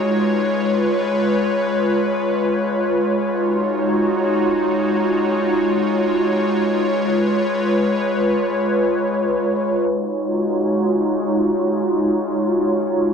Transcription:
analog synth pad
Already playing: G#3 C#5
0.04 F4 B4
3.33 G#3 D#4 F#4 C#5
6.62 B4
9.91 G#3 D#4 F4 F#4 C#5

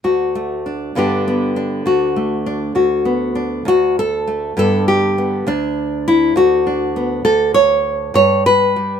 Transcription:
nylon-string guitar
0.04 D2 F#4
0.35 A3
0.66 D4
0.95 G2 D3 B3 D4 G4
1.28 B3
1.56 D4
1.86 D2 F#4
2.16 A3
2.46 D4
2.75 D2 F#4
3.05 B3
3.35 D4
3.65 D2 F#4
3.99 A4
4.27 A3
4.57 G2 D3 B3 D4 A4
4.88 G4
5.18 B3
5.47 D2 D4
6.08 E4
6.36 D2 F#4
6.67 D4
6.96 B3
7.25 D2 A4
7.54 C#5
8.14 G2 C#5
8.46 B4
8.76 G3

